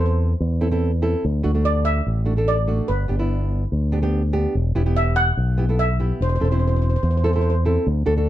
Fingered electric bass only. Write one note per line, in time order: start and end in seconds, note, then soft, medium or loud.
0.00 0.33 E2 medium
0.40 1.14 E2 medium
1.25 1.42 D2 medium
1.45 2.00 D2 medium
2.06 2.80 A1 medium
2.89 3.08 G1 medium
3.10 3.65 G1 medium
3.72 4.45 D2 medium
4.55 4.73 E1 medium
4.76 5.31 E1 medium
5.37 6.11 B1 medium
6.20 6.39 E1 medium
6.41 6.96 E1 medium
7.03 7.76 E2 medium
7.87 8.05 D2 medium
8.07 8.29 D2 medium